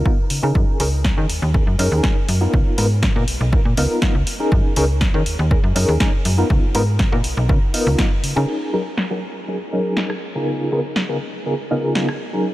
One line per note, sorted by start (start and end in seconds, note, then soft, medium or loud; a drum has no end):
0.05 0.17 B3 medium
0.05 0.17 D#4 medium
0.05 0.17 F4 medium
0.05 0.17 A#4 medium
0.05 kick loud
0.30 0.41 C#3 soft
0.30 open hi-hat loud
0.43 0.52 C#3 medium
0.43 0.77 C#4 medium
0.43 0.77 D#4 medium
0.43 0.77 G#4 medium
0.43 0.77 A#4 medium
0.55 0.65 F#2 loud
0.55 kick loud
0.80 1.12 C#2 medium
0.80 0.87 C#4 medium
0.80 0.87 D#4 medium
0.80 0.87 G#4 medium
0.80 0.87 A#4 loud
0.80 open hi-hat loud
1.04 kick loud
1.04 snare loud
1.17 1.27 D#3 loud
1.17 1.24 C#4 medium
1.17 1.24 D#4 medium
1.17 1.24 G#4 medium
1.17 1.24 A#4 loud
1.30 1.40 D#2 soft
1.30 open hi-hat medium
1.42 1.60 D#2 loud
1.54 1.61 C#4 medium
1.54 1.61 D#4 medium
1.54 1.61 G#4 medium
1.54 1.62 A#4 medium
1.54 kick loud
1.67 1.76 F#2 medium
1.79 1.89 F#2 medium
1.79 2.01 C#4 medium
1.79 2.01 D#4 medium
1.79 2.01 G#4 medium
1.79 2.01 A#4 loud
1.79 open hi-hat loud
1.92 2.01 D#2 loud
2.03 2.15 C#4 medium
2.03 2.15 D#4 medium
2.03 2.15 G#4 medium
2.03 2.15 A#4 medium
2.03 kick loud
2.03 snare loud
2.29 2.47 F#2 medium
2.29 open hi-hat medium
2.41 2.75 B3 medium
2.41 2.75 D#4 medium
2.41 2.75 F4 medium
2.41 2.76 A#4 medium
2.53 2.63 C#2 loud
2.53 kick loud
2.78 3.10 G#2 medium
2.78 2.85 B3 medium
2.78 2.85 D#4 medium
2.78 2.85 F4 medium
2.78 2.85 A#4 loud
2.78 open hi-hat medium
3.03 kick loud
3.03 snare loud
3.15 3.25 A#2 loud
3.15 3.22 B3 medium
3.15 3.22 D#4 medium
3.15 3.23 F4 medium
3.15 3.23 A#4 loud
3.28 3.38 B1 soft
3.28 open hi-hat medium
3.41 3.59 B1 loud
3.52 3.59 B3 medium
3.52 3.60 D#4 medium
3.52 3.60 F4 medium
3.52 3.60 A#4 medium
3.52 kick loud
3.65 3.74 A#2 medium
3.77 3.87 C#2 medium
3.77 3.99 B3 medium
3.77 3.99 D#4 medium
3.77 4.00 F4 medium
3.77 4.00 A#4 loud
3.77 open hi-hat medium
4.02 4.13 B3 medium
4.02 4.14 D#4 medium
4.02 4.14 F4 medium
4.02 4.14 A#4 medium
4.02 kick loud
4.02 snare loud
4.15 4.24 C#2 medium
4.27 open hi-hat medium
4.40 4.74 C#4 medium
4.40 4.74 D#4 medium
4.40 4.74 G#4 medium
4.40 4.74 A#4 medium
4.52 4.61 F#2 loud
4.52 kick loud
4.76 5.09 C#2 medium
4.76 4.84 C#4 medium
4.76 4.84 D#4 medium
4.76 4.84 G#4 medium
4.76 4.84 A#4 loud
4.76 open hi-hat loud
5.01 kick loud
5.01 snare loud
5.14 5.23 D#3 loud
5.14 5.21 C#4 medium
5.14 5.21 D#4 medium
5.14 5.21 G#4 medium
5.14 5.21 A#4 loud
5.26 5.37 D#2 soft
5.26 open hi-hat medium
5.39 5.57 D#2 loud
5.51 5.58 C#4 medium
5.51 5.58 D#4 medium
5.51 5.58 G#4 medium
5.51 5.58 A#4 medium
5.51 kick loud
5.64 5.73 F#2 loud
5.76 5.85 F#2 medium
5.76 5.98 C#4 medium
5.76 5.98 D#4 medium
5.76 5.98 G#4 medium
5.76 5.98 A#4 loud
5.76 open hi-hat loud
5.88 5.97 D#2 medium
6.00 6.12 C#4 medium
6.00 6.12 D#4 medium
6.00 6.12 G#4 medium
6.00 6.12 A#4 medium
6.00 kick loud
6.00 snare loud
6.25 6.44 F#2 medium
6.25 open hi-hat medium
6.38 6.72 B3 medium
6.38 6.72 D#4 medium
6.38 6.72 F4 medium
6.38 6.72 A#4 medium
6.50 6.60 C#2 loud
6.50 kick loud
6.75 7.07 G#2 medium
6.75 6.82 B3 medium
6.75 6.82 D#4 medium
6.75 6.82 F4 medium
6.75 6.82 A#4 loud
6.75 open hi-hat loud
6.99 kick loud
6.99 snare loud
7.12 7.21 A#2 loud
7.12 7.19 B3 medium
7.12 7.19 D#4 medium
7.12 7.19 F4 medium
7.12 7.19 A#4 loud
7.24 7.35 B1 soft
7.24 open hi-hat medium
7.37 7.49 B1 loud
7.49 7.59 C#3 medium
7.49 7.56 B3 medium
7.49 7.56 D#4 medium
7.49 7.56 F4 medium
7.49 7.57 A#4 medium
7.49 kick loud
7.74 7.96 B3 medium
7.74 7.96 D#4 medium
7.74 7.96 F4 medium
7.74 7.96 A#4 medium
7.74 open hi-hat medium
7.87 7.96 C#2 medium
7.98 8.10 B3 medium
7.98 8.10 D#4 medium
7.98 8.10 F4 medium
7.98 8.10 A#4 medium
7.98 kick loud
7.98 snare loud
8.24 8.34 C#3 soft
8.24 open hi-hat medium
8.36 8.45 C#3 medium
8.36 8.70 C#4 medium
8.36 8.70 D#4 medium
8.36 8.70 G#4 medium
8.36 8.71 A#4 medium
8.48 crash medium
8.73 8.80 F#3 medium
8.73 8.80 C#4 medium
8.73 8.80 D#4 medium
8.73 8.81 G#4 medium
8.73 8.81 A#4 medium
8.97 snare loud
9.10 9.17 F#3 medium
9.10 9.18 C#4 medium
9.10 9.18 D#4 medium
9.10 9.18 G#4 medium
9.10 9.18 A#4 medium
9.48 9.55 F#3 medium
9.48 9.55 C#4 medium
9.48 9.55 D#4 medium
9.48 9.55 G#4 medium
9.48 9.55 A#4 medium
9.72 9.94 F#3 medium
9.72 9.94 C#4 medium
9.72 9.95 D#4 medium
9.72 9.95 G#4 medium
9.72 9.95 A#4 medium
9.97 10.09 F#3 medium
9.97 10.09 C#4 medium
9.97 10.09 D#4 medium
9.97 10.09 G#4 medium
9.97 10.09 A#4 medium
9.97 snare loud
10.10 cross-stick medium
10.35 10.69 C#3 medium
10.35 10.69 B3 medium
10.35 10.69 D#4 medium
10.35 10.69 F4 medium
10.35 10.69 G#4 medium
10.35 10.69 A#4 medium
10.72 10.79 C#3 medium
10.72 10.79 B3 medium
10.72 10.79 D#4 medium
10.72 10.79 F4 medium
10.72 10.79 G#4 medium
10.72 10.79 A#4 loud
10.96 snare loud
11.09 11.16 C#3 medium
11.09 11.16 B3 medium
11.09 11.16 D#4 medium
11.09 11.16 F4 medium
11.09 11.16 G#4 medium
11.09 11.16 A#4 loud
11.45 11.53 C#3 medium
11.45 11.53 B3 medium
11.45 11.53 D#4 medium
11.45 11.53 F4 medium
11.45 11.53 G#4 medium
11.45 11.53 A#4 medium
11.70 11.93 C#3 medium
11.70 11.93 B3 medium
11.70 11.93 D#4 medium
11.70 11.93 F4 medium
11.70 11.93 G#4 medium
11.70 11.93 A#4 loud
11.95 12.07 C#3 medium
11.95 12.07 B3 medium
11.95 12.07 D#4 medium
11.95 12.07 F4 medium
11.95 12.07 G#4 medium
11.95 snare loud
12.09 cross-stick medium
12.33 12.54 F#3 medium
12.33 12.54 C#4 medium
12.33 12.54 D#4 medium
12.33 12.54 G#4 medium
12.33 12.54 A#4 medium